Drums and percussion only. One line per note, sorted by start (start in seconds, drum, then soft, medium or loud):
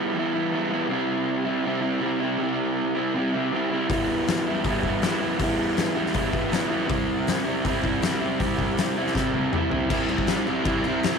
3.90 kick loud
3.90 open hi-hat medium
4.27 snare loud
4.27 open hi-hat medium
4.64 kick loud
4.64 open hi-hat medium
4.83 kick medium
5.02 snare loud
5.02 open hi-hat medium
5.39 kick loud
5.39 open hi-hat medium
5.77 snare loud
5.77 open hi-hat medium
6.06 snare soft
6.14 kick loud
6.14 open hi-hat medium
6.33 kick medium
6.52 snare loud
6.52 open hi-hat medium
6.89 kick loud
6.89 open hi-hat medium
7.27 snare loud
7.27 open hi-hat medium
7.65 kick loud
7.65 open hi-hat medium
7.84 kick medium
8.02 snare loud
8.02 open hi-hat medium
8.40 kick loud
8.40 open hi-hat medium
8.59 kick medium
8.78 snare loud
8.78 open hi-hat medium
9.07 snare soft
9.15 kick loud
9.15 snare medium
9.34 high tom medium
9.53 mid tom medium
9.71 floor tom medium
9.90 kick loud
9.90 crash loud
9.90 crash medium
10.09 crash medium
10.18 kick medium
10.27 snare loud
10.27 crash medium
10.47 crash medium
10.65 kick loud
10.65 crash medium
10.84 crash medium
11.03 snare loud
11.03 crash medium